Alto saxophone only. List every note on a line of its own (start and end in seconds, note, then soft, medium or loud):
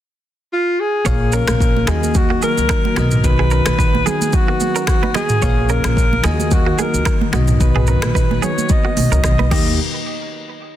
0.53 0.81 F4 medium
0.80 1.36 G#4 loud
1.34 1.90 A#4 loud
1.89 2.17 G#4 loud
2.16 2.43 F#4 loud
2.43 3.27 A#4 loud
3.25 4.09 B4 loud
4.07 4.36 G#4 loud
4.34 4.88 F#4 loud
4.89 5.14 F#4 loud
5.16 5.72 G#4 loud
5.71 6.27 A#4 loud
6.26 6.54 G#4 loud
6.53 6.81 F#4 medium
6.80 7.34 A#4 medium
7.62 8.45 B4 medium
8.43 8.72 C#5 medium
8.71 9.52 D#5 loud
9.52 9.77 D#5 medium